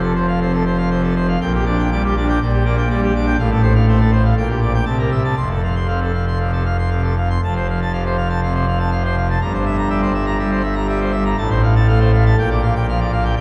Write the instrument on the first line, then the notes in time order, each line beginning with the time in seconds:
pipe organ
Already playing: F1 F2 C3
0.02 A4
0.15 C5
0.28 F5
0.41 C3 C5
0.52 A4
0.66 C5
0.77 F5
0.90 C3 C5
1.03 A4
1.16 C5
1.28 F5
1.41 A#1 A#2 G5
1.53 G4
1.65 D4 D5
1.79 G5
1.91 G3 D5
2.05 G4
2.16 D4 D5
2.29 G5
2.41 A#1 A#2 D5
2.53 G4
2.65 A#3 D5
2.78 G5
2.90 G3 D5
3.03 G4
3.15 D4 D5
3.27 G5
3.39 A1 A2 F5
3.51 A4
3.62 C5
3.75 F5
3.88 A3 C5
4.00 A4
4.12 C5
4.25 F5
4.37 A#1 A#2 G5
4.49 G4
4.62 D5
4.74 G5
4.85 C2 C3 A5
4.98 A#4
5.11 E5
5.24 A5
5.36 F1 F2 C6
5.50 A4
5.63 F5
5.76 C6
5.87 C3 F5
6.01 A4
6.14 F5
6.27 C6
6.40 C3 F5
6.52 A4
6.65 F5
6.78 C6
6.90 C3 F5
7.03 A4
7.17 F5
7.30 C6
7.43 F1 F2 A5
7.56 C5
7.70 F5
7.81 A5
7.93 C3 F5
8.06 C5
8.17 F5
8.29 A5
8.43 C3 F5
8.55 C5
8.67 F5
8.79 A5
8.91 C3 F5
9.05 C5
9.17 F5
9.30 A5
9.41 G1 G2 A#5
9.54 C5
9.65 E5
9.78 A#5
9.89 G3 E5
10.01 C5
10.14 E5
10.26 A#5
10.39 G3 E5
10.51 C5
10.63 E5
10.75 A#5
10.88 G3 E5
11.00 C5
11.12 E5
11.25 A#5
11.37 A1 A2 A5
11.50 C5
11.63 F5
11.75 A5
11.88 A3 F5
12.00 C5
12.13 F5
12.26 A5
12.38 A#1 A#2 G5
12.50 D5
12.63 F5
12.75 G5
12.88 F3 F5
13.00 D5
13.12 F5
13.25 G5
13.36 C2 C3 G5